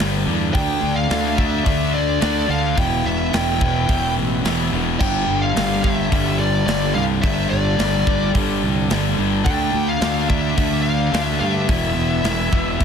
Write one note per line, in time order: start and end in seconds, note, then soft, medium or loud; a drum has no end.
0.00 0.24 G1 medium
0.00 0.26 G2 medium
0.00 0.26 D3 loud
0.00 0.50 G3 medium
0.00 0.27 G3 medium
0.00 2.73 D4 medium
0.00 0.52 B4 medium
0.00 snare loud
0.27 0.55 E2 loud
0.27 0.53 G2 medium
0.27 0.53 D3 medium
0.27 0.53 G3 loud
0.54 0.80 D2 loud
0.54 1.08 D3 loud
0.54 1.09 A3 loud
0.54 1.09 D4 loud
0.54 2.76 A4 medium
0.54 2.76 D5 medium
0.54 0.97 G5 loud
0.54 kick loud
0.54 open hi-hat medium
0.83 1.08 D2 medium
0.96 1.38 F5 loud
1.09 1.62 D2 loud
1.09 1.36 D3 medium
1.09 1.37 A3 medium
1.09 1.37 D4 medium
1.09 snare loud
1.09 open hi-hat medium
1.37 1.63 D3 medium
1.37 1.63 A3 medium
1.37 1.64 D4 loud
1.37 1.94 E5 loud
1.37 kick medium
1.64 2.18 D2 medium
1.64 2.19 D3 medium
1.64 2.20 A3 loud
1.64 2.20 D4 loud
1.64 kick medium
1.64 open hi-hat medium
1.94 2.50 D5 medium
2.20 2.47 D2 medium
2.20 2.47 D3 medium
2.20 2.47 A3 medium
2.20 2.48 D4 loud
2.20 snare loud
2.20 open hi-hat medium
2.48 2.75 D2 medium
2.48 2.75 D3 medium
2.48 2.75 A3 medium
2.48 2.75 D4 loud
2.48 2.79 F5 medium
2.76 3.03 E1 loud
2.76 3.30 E2 medium
2.76 3.31 B2 loud
2.76 3.32 E3 loud
2.76 4.98 E4 medium
2.76 4.98 B4 medium
2.76 4.98 E5 medium
2.76 3.06 G5 loud
2.76 kick loud
2.76 open hi-hat medium
3.06 3.31 E1 medium
3.06 3.34 E5 medium
3.32 3.59 E1 loud
3.32 3.58 E2 medium
3.32 3.59 B2 medium
3.32 3.59 E3 medium
3.32 4.13 G5 medium
3.32 snare loud
3.32 open hi-hat medium
3.59 3.86 E1 medium
3.59 3.86 E2 medium
3.59 3.87 B2 medium
3.59 3.87 E3 loud
3.59 kick medium
3.87 4.14 E1 medium
3.87 4.42 E2 loud
3.87 4.43 B2 loud
3.87 4.44 E3 loud
3.87 kick medium
3.87 open hi-hat medium
4.17 4.42 A1 medium
4.44 4.70 E1 medium
4.44 4.71 E2 medium
4.44 4.72 B2 medium
4.44 4.72 E3 medium
4.44 snare loud
4.44 open hi-hat medium
4.72 4.98 E1 medium
4.72 4.98 E2 medium
4.72 4.99 B2 medium
4.72 4.99 E3 medium
4.99 5.26 G1 medium
4.99 5.55 G2 loud
4.99 5.55 D3 loud
4.99 9.41 G3 medium
4.99 5.56 G3 loud
4.99 11.64 D4 medium
4.99 11.64 A4 medium
4.99 5.43 G5 loud
4.99 kick loud
4.99 crash loud
5.28 5.53 G1 medium
5.42 5.81 F5 medium
5.55 6.07 G1 loud
5.55 5.83 G2 medium
5.55 5.83 D3 medium
5.55 5.84 G3 medium
5.55 snare loud
5.55 open hi-hat medium
5.83 6.10 G2 medium
5.83 6.11 D3 medium
5.83 6.11 G3 medium
5.83 6.35 E5 loud
5.83 kick medium
6.11 6.64 G1 medium
6.11 6.66 G2 loud
6.11 6.67 D3 loud
6.11 6.67 G3 loud
6.11 kick medium
6.11 open hi-hat medium
6.40 6.66 D5 medium
6.67 6.93 G1 medium
6.67 6.94 G2 medium
6.67 6.95 D3 medium
6.67 6.96 G3 medium
6.67 6.94 D5 medium
6.67 snare loud
6.67 open hi-hat medium
6.95 7.21 C2 medium
6.95 7.23 G2 medium
6.95 7.24 D3 medium
6.95 7.24 G3 loud
6.95 7.02 F5 loud
7.22 7.49 G1 medium
7.22 7.78 G2 medium
7.22 7.79 D3 loud
7.22 7.79 G3 loud
7.22 7.50 E5 medium
7.22 kick loud
7.22 open hi-hat medium
7.50 7.76 G1 medium
7.50 8.30 D5 medium
7.79 8.04 G1 loud
7.79 8.06 G2 medium
7.79 8.07 D3 loud
7.79 8.07 G3 loud
7.79 snare loud
7.79 open hi-hat medium
8.07 8.32 G1 medium
8.07 8.34 G2 medium
8.07 8.35 D3 medium
8.07 8.35 G3 medium
8.07 kick medium
8.35 8.60 G1 medium
8.35 8.89 G2 medium
8.35 8.89 D3 loud
8.35 8.90 G3 loud
8.35 kick medium
8.35 open hi-hat medium
8.62 8.88 C2 medium
8.90 9.16 G1 loud
8.90 9.17 G2 loud
8.90 9.17 D3 loud
8.90 9.18 G3 loud
8.90 snare loud
8.90 open hi-hat medium
9.18 9.43 G1 loud
9.18 9.44 G2 medium
9.18 9.44 D3 medium
9.18 9.45 G3 loud
9.45 9.71 D2 loud
9.45 10.00 D3 loud
9.45 10.01 A3 loud
9.45 10.02 D4 loud
9.45 11.66 D5 medium
9.45 9.88 G5 loud
9.45 kick loud
9.45 open hi-hat medium
9.74 9.99 D2 loud
9.89 10.29 F5 loud
10.01 10.53 D2 loud
10.01 10.28 D3 medium
10.01 10.28 A3 loud
10.01 10.29 D4 loud
10.01 snare loud
10.01 open hi-hat medium
10.29 10.55 D3 medium
10.29 10.56 A3 medium
10.29 10.56 D4 loud
10.29 10.82 E5 loud
10.29 kick medium
10.56 11.09 D2 medium
10.56 11.11 D3 loud
10.56 11.11 A3 loud
10.56 11.12 D4 loud
10.56 kick medium
10.56 open hi-hat medium
10.82 11.25 F5 loud
11.12 11.38 D2 medium
11.12 11.39 D3 medium
11.12 11.40 A3 medium
11.12 11.40 D4 loud
11.12 snare loud
11.12 open hi-hat medium
11.25 11.40 E5 loud
11.40 11.66 G2 loud
11.40 11.67 D3 medium
11.40 11.67 A3 medium
11.40 11.67 D4 medium
11.40 12.85 E5 medium
11.68 11.94 E1 loud
11.68 12.23 E2 loud
11.68 12.24 B2 loud
11.68 12.24 E3 loud
11.68 12.85 E4 medium
11.68 12.85 B4 medium
11.68 12.85 E5 medium
11.68 kick loud
11.68 open hi-hat medium
11.96 12.22 E1 medium
12.24 12.50 E1 medium
12.24 12.50 E2 medium
12.24 12.51 B2 medium
12.24 12.51 E3 loud
12.24 snare loud
12.24 open hi-hat medium
12.51 12.78 E1 medium
12.51 12.78 E2 medium
12.51 12.78 B2 medium
12.51 12.79 E3 medium
12.51 kick medium
12.79 12.85 E1 loud
12.79 12.85 E2 loud
12.79 12.85 B2 loud
12.79 12.85 E3 loud
12.79 kick medium
12.79 open hi-hat medium